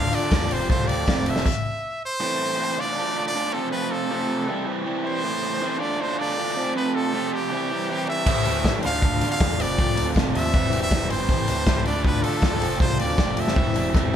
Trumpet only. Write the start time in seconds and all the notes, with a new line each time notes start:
Already playing: F5
0.15 D5
0.53 C5
0.71 C5
0.88 D5
1.30 E5
2.05 C5
2.80 D5
3.28 D5
3.53 A4
3.72 B4
3.91 A4
5.06 C5
5.80 D5
6.01 C5
6.19 D5
6.76 B4
6.95 A4
7.33 G4
8.09 E5
8.85 F5
9.32 F5
9.61 D5
10.37 E5
10.83 E5
11.10 C5
11.86 D5
12.05 B4
12.23 A4
12.82 C5
13.00 D5
13.40 E5